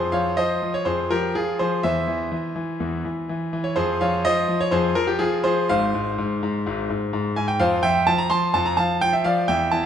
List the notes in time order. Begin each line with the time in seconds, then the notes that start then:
Already playing: F2 F3 G#4 C5
0.12 F3 C#5 F5
0.37 F3 C5 D#5
0.62 F3
0.74 C#5
0.85 F2 F3 G#4 C5
1.11 F3 G4 A#4
1.35 F3 F4 G#4
1.59 F3 G#4 C5
1.83 E2 E3 C5 E5
2.08 E3
2.32 E3
2.56 E3
2.80 E2 E3
3.05 E3
3.29 E3
3.53 E3
3.64 C#5
3.76 F2 F3 G#4 C5
4.01 F3 C#5 F5
4.25 F3 C5 D#5
4.49 F3
4.61 C#5
4.71 F2 F3 G#4 C5
4.95 F3 A#4
5.07 G4
5.19 F3 F4 G#4
5.44 F3 G#4 C5
5.69 G#1 G#2 C5 F5
5.95 G#2
6.18 G#2
6.43 G#2
6.66 G#1 G#2
6.90 G#2
7.13 G#2
7.36 G#2 G#5
7.48 G5
7.60 F2 F3 C5 F5
7.83 F3 E5 G5
8.07 F3 A5
8.18 A#5
8.30 F3 A5 C6
8.54 F2 F3 A5
8.66 A#5
8.77 F3 F5 A5
9.01 F3 G5
9.13 E5
9.24 F3 D5 F5
9.48 E2 E3 E5 G5
9.71 E3 A5